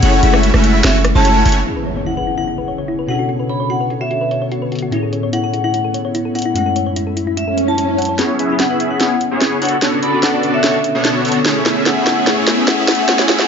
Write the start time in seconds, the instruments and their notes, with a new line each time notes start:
0.01 808-style bass F#1, tine electric piano A3 C#4 E4 G#4, supersaw synth A3 C#4 E4 F#4 C#5, vibraphone F#5, closed hi-hat, ride
0.13 vibraphone F#5
0.23 808-style bass F#1, supersaw synth A3 C#4 E4 F#4 E5, closed hi-hat
0.31 tine electric piano G#3 A3 C#4 E4, cross-stick
0.43 closed hi-hat
0.54 808-style bass F#1, supersaw synth A3 C#4 E4 F#4 E5, cross-stick
0.64 closed hi-hat
0.84 808-style bass F#1, supersaw synth A3 C#4 E4 F#4 C#5, vibraphone E5, snare, closed hi-hat, ride
1.05 cross-stick, closed hi-hat
1.15 808-style bass F#1, supersaw synth A3 C#4 E4 F#4 C#5, vibraphone A5
1.25 closed hi-hat
1.45 808-style bass F#1, supersaw synth A3 C#4 E4 F#4 C#5, closed hi-hat, open hi-hat
1.52 closed hi-hat
1.64 ambient pad C#3 B3 E4 G#4 C#5, tine electric piano B3 C#4 E4 G#4, synth arpeggio sound E4, impact
1.76 synth arpeggio sound B4
1.86 synth arpeggio sound C#5
1.97 synth arpeggio sound C#5
2.06 synth arpeggio sound E4, vibraphone F#5
2.17 synth arpeggio sound B4, vibraphone F#5
2.27 synth arpeggio sound E4
2.38 synth arpeggio sound E4, vibraphone F#5
2.47 synth arpeggio sound E4, closed hi-hat
2.58 synth arpeggio sound B4
2.68 synth arpeggio sound C#5, closed hi-hat
2.78 synth arpeggio sound C#5
2.88 synth arpeggio sound E4, closed hi-hat
2.99 synth arpeggio sound B4
3.07 tine electric piano B2 C#4 D4 F#4 A4, ambient pad B2 D3 B3 A4, synth arpeggio sound F#4, vibraphone F#5, closed hi-hat
3.12 closed hi-hat
3.15 synth arpeggio sound F#4, closed hi-hat
3.29 synth arpeggio sound F#4, closed hi-hat
3.40 synth arpeggio sound B4
3.49 synth arpeggio sound C#5, vibraphone B5, closed hi-hat
3.60 synth arpeggio sound C#5
3.70 synth arpeggio sound F#4, vibraphone F#5, closed hi-hat
3.80 synth arpeggio sound B4
3.90 synth arpeggio sound F#4, closed hi-hat
4.01 synth arpeggio sound F#4, vibraphone E5
4.11 synth arpeggio sound F#4, closed hi-hat
4.21 synth arpeggio sound B4
4.31 synth arpeggio sound C#5, closed hi-hat
4.42 synth arpeggio sound C#5
4.52 synth arpeggio sound F#4, closed hi-hat
4.62 synth arpeggio sound B4
4.72 synth arpeggio sound F#4, closed hi-hat
4.75 closed hi-hat
4.79 synth arpeggio sound F#4, closed hi-hat
4.90 tine electric piano A2 B3 C#4 E4 G#4, ambient pad A2 A3 B3 E4, synth arpeggio sound E4, closed hi-hat
5.03 synth arpeggio sound A4
5.13 synth arpeggio sound C#5, closed hi-hat
5.23 synth arpeggio sound C#5
5.33 synth arpeggio sound E4, vibraphone F#5, closed hi-hat
5.44 synth arpeggio sound A4, vibraphone F#5
5.54 synth arpeggio sound E4, closed hi-hat
5.64 synth arpeggio sound E4, vibraphone F#5
5.74 synth arpeggio sound E4, closed hi-hat
5.84 synth arpeggio sound A4
5.94 synth arpeggio sound C#5, closed hi-hat
6.05 synth arpeggio sound C#5
6.15 synth arpeggio sound E4, closed hi-hat
6.25 synth arpeggio sound A4
6.35 synth arpeggio sound E4, vibraphone F#5, closed hi-hat
6.39 closed hi-hat
6.42 synth arpeggio sound E4, closed hi-hat
6.54 tine electric piano F#2 G#3 A3 C#4 E4, ambient pad F#2 F#3 C#4 E5, synth arpeggio sound E4, vibraphone F#5, closed hi-hat
6.66 synth arpeggio sound A4, vibraphone F#5
6.76 synth arpeggio sound C#5, closed hi-hat
6.86 synth arpeggio sound C#5
6.96 synth arpeggio sound E4, closed hi-hat
7.07 synth arpeggio sound A4
7.17 synth arpeggio sound E4, closed hi-hat
7.27 synth arpeggio sound E4
7.37 synth arpeggio sound E4, vibraphone E5, closed hi-hat, swell
7.48 synth arpeggio sound A4
7.57 synth arpeggio sound A4, closed hi-hat
7.68 synth arpeggio sound E4, vibraphone A5
7.78 synth arpeggio sound E4, closed hi-hat
7.88 synth arpeggio sound E4
7.98 synth arpeggio sound F#5, closed hi-hat
8.02 closed hi-hat
8.05 synth arpeggio sound C#5, closed hi-hat
8.18 ambient pad C#3 B3 E4 G#4 C#5, tine electric piano B3 C#4 E4 G#4, supersaw synth B3 C#4 E4 G#4 C#5, snare, closed hi-hat, riser
8.39 supersaw synth B3 C#4 E4 G#4 E5, closed hi-hat
8.48 tine electric piano B3 C#4 E4
8.52 tine electric piano G#4
8.60 vibraphone F#5, snare, closed hi-hat
8.70 supersaw synth B3 C#4 E4 G#4 E5, vibraphone F#5
8.80 closed hi-hat
8.91 vibraphone F#5
9.00 supersaw synth B3 C#4 E4 G#4 C#5, snare, closed hi-hat
9.21 closed hi-hat
9.31 supersaw synth B3 C#4 E4 G#4 C#5
9.41 snare, closed hi-hat
9.62 ambient pad B2 D3 A4, supersaw synth B3 D4 F#4 A4 C#5, vibraphone F#5, closed hi-hat, open hi-hat
9.69 closed hi-hat
9.81 supersaw synth B3 D4 F#4 A4 C#5, tine electric piano C#4 D4 F#4 A4, snare, closed hi-hat
10.02 supersaw synth B3 D4 F#4 A4 D5, vibraphone B5, closed hi-hat
10.11 tine electric piano C#4 D4 F#4
10.15 tine electric piano A4
10.23 vibraphone F#5, snare, closed hi-hat
10.33 supersaw synth B3 D4 F#4 A4 D5
10.43 closed hi-hat
10.54 vibraphone E5
10.64 supersaw synth B3 D4 F#4 A4 C#5, snare, closed hi-hat
10.84 closed hi-hat
10.95 supersaw synth B3 D4 F#4 A4 C#5
11.05 snare, closed hi-hat
11.25 supersaw synth B3 D4 F#4 A4 C#5, closed hi-hat, open hi-hat
11.32 closed hi-hat
11.44 ambient pad A2 A3 G#4, supersaw synth A3 C#4 E4 G#4 C#5, tine electric piano B3 C#4 E4 G#4, snare, closed hi-hat
11.66 supersaw synth A3 C#4 E4 G#4 E5, snare, closed hi-hat
11.74 tine electric piano B3 C#4 E4 G#4
11.86 vibraphone F#5, snare, closed hi-hat
11.97 supersaw synth A3 C#4 E4 G#4 E5, vibraphone F#5
12.07 snare, closed hi-hat
12.17 vibraphone F#5
12.26 supersaw synth A3 C#4 E4 G#4 C#5, tine electric piano B3 C#4 E4 G#4, snare, closed hi-hat
12.47 supersaw synth A3 C#4 E4 G#4 E5, snare, closed hi-hat
12.56 tine electric piano B3 C#4 E4
12.60 tine electric piano G#4
12.68 vibraphone F#5, snare, closed hi-hat
12.78 supersaw synth A3 C#4 E4 G#4 E5, vibraphone F#5
12.88 snare, closed hi-hat, open hi-hat
12.95 vibraphone F#5, closed hi-hat
13.07 ambient pad F#2 F#3 A3 E5, supersaw synth A3 C#4 E4 G#4 C#5, tine electric piano B3 C#4 E4 G#4, vibraphone F#5, snare, closed hi-hat
13.19 vibraphone F#5, snare
13.29 supersaw synth A3 C#4 E4 G#4 E5, snare, closed hi-hat
13.38 tine electric piano B3 C#4 E4, vibraphone F#5, snare
13.42 tine electric piano G#4